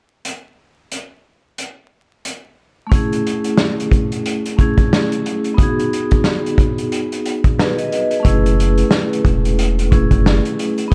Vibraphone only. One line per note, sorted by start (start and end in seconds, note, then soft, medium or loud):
2.87 4.52 A3 medium
2.87 4.54 C#4 medium
2.92 4.55 E4 medium
2.92 4.57 G#4 medium
4.57 5.57 A3 medium
4.57 5.58 C#4 medium
4.57 5.59 E4 medium
4.61 5.60 G#4 medium
5.54 8.19 B3 medium
5.54 8.20 D#4 medium
5.60 8.22 F#4 medium
5.60 7.57 G#4 medium
7.59 7.77 G#4 soft
7.59 7.77 B4 medium
7.78 7.91 B4 medium
7.78 7.91 D#5 medium
7.92 8.10 B4 medium
7.92 8.10 D#5 medium
8.11 8.27 G#4 medium
8.11 8.43 B4 medium
8.20 9.86 A3 medium
8.20 9.87 C#4 medium
8.25 9.88 E4 medium
8.25 9.90 G#4 medium
9.90 10.91 A3 medium
9.90 10.91 C#4 medium
9.90 10.92 E4 medium
9.94 10.93 G#4 medium
10.88 10.94 B3 medium
10.88 10.94 D#4 medium